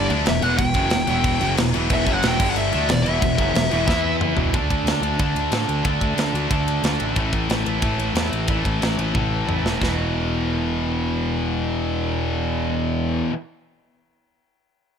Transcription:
Already playing: G2 G3
0.08 D2 D3 E3 F#3 A3 B3, crash
0.12 D4
0.26 E1 E2 B2 E5, snare, crash
0.42 E1 E2 B2 E3 F#5, crash
0.58 E1 E2 B2 G5, kick, crash
0.74 F#1 F#2 C#3 F#3, kick, crash
0.90 E1 E2 B2, snare, crash
1.07 E1 E2 B2 E3, crash
1.24 kick, crash
1.41 F#1 F#2 C#3 F#3, crash
1.57 E1 E2 B2, snare, crash
1.74 E1 E2 B2 E3, crash
1.90 E1 E2 B2 E3 E5, kick, crash
2.06 F#1 F#2 C#3 F#3, kick, crash
2.13 F#5
2.23 E1 E2 B2 E3, snare, crash
2.28 G5
2.39 G1 G2 D3 G3 D4 A4, kick, crash
2.50 F#5
2.56 E5, crash
2.72 D2 D3 E3 A3 B3 D4 F#4, crash
2.89 E1 E2 B2 D5, snare, crash
3.02 E2 B2 E5, crash
3.06 E1 E3
3.22 E1 E2 B2, kick, crash
3.38 F#1 F#2 C#3 F#3, kick, crash
3.54 E1 E2 B2, snare, crash
3.71 E1 E2 B2 E3, crash
3.88 E2 E3 B3 E4, kick, snare
4.21 mid tom
4.36 E1 E2 B2 E3, floor tom
4.52 D2 D3 A3 D4, kick, ride
4.70 D2, kick, ride
4.85 D2, snare, ride
5.02 D2 D3 A3 D4, ride
5.17 D3 A3, kick, ride
5.21 D4
5.35 D2, ride
5.51 A2 D3 A3 D4, snare, ride
5.68 D2, ride
5.83 D2 D3 A3 D4, kick, ride
6.01 D2, kick, ride
6.16 D2, snare, ride
6.33 D2 A3 D4, ride
6.38 D3
6.48 D2 D3 A3 D4, kick, ride
6.68 ride
6.83 D2 D3 A3 D4, snare, ride
7.00 A1, ride
7.15 A1 A2 E3 A3, kick, ride
7.33 A1, kick, ride
7.50 A1, snare, ride
7.64 A1 A2 E3 A3, ride
7.80 A2 E3, kick, ride
7.84 A3
7.98 A1, ride
8.14 E2 A2 E3 A3, snare, ride
8.32 A1, ride
8.48 A1 A2 E3 A3, kick, ride
8.65 A1, kick, ride
8.82 A1, snare, ride
8.98 A1 A2 E3 A3, ride
9.14 A1 A2 E3 A3, kick, high tom
9.46 A1 A2 E3 A3, mid tom
9.63 E1, snare
9.80 E1 E2 B2 E3, kick, snare, splash

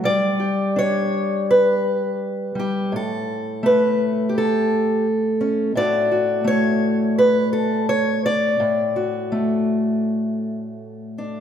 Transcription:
0.04 G3 D5
0.40 G4
0.76 D4 C#5
1.51 B4
2.55 G3
2.59 G4
2.92 A2 A4
3.63 A3 B4
4.29 G4
4.38 A4
5.41 C#4
5.75 A2 A3 D4 F#4 D5
6.12 F#4
6.44 A3 C#5
7.18 B4
7.53 A4
7.89 C#5
8.26 D5
8.60 A2
8.96 F#4
9.32 A3
11.18 D4

